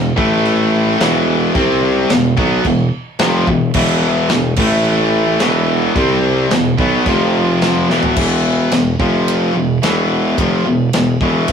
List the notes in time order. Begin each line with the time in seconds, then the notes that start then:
Already playing: E1 E2 B2
0.16 A1 A2 E3 A3, kick
0.45 china
1.00 E1 E2 B2 E3, snare, china
1.55 C2 C3 G3 C4, kick, china
2.10 E1 E2 B2, snare, china
2.37 B1 B2 F#3 B3, kick
2.64 E1 E2 B2, kick, china
3.19 F1 F2 C3 F3, snare, china
3.47 E1 E2 B2, kick
3.74 E1 E2 B2 E3, kick, china, crash
4.29 E1 E2 B2, snare, china
4.56 A1 A2 E3 A3, kick, crash
4.84 china
5.40 E1 E2 B2 E3, snare, china
5.95 C2 C3 G3 C4, kick, china
6.51 E1 E2 B2, snare, china
6.78 B1 B2 F#3 B3, kick
7.06 F1 F2 C3 F3, kick, china
7.61 snare, china
7.89 E1 E2 B2 E3, snare
8.03 floor tom
8.16 E1 E2 B2 E3, kick, crash
8.72 E1 E2 B2, snare, ride bell
8.99 F1 F2 C3 F3, kick
9.28 ride bell
9.56 E1 E2 B2
9.83 E1 E2 B2 E3, snare, ride bell
10.37 F1 F2 C3 F3, kick, ride bell
10.67 E1 E2 B2
10.93 E1 E2 B2, snare, ride bell
11.21 E1 E2 B2 E3, kick
11.48 E1, kick, ride bell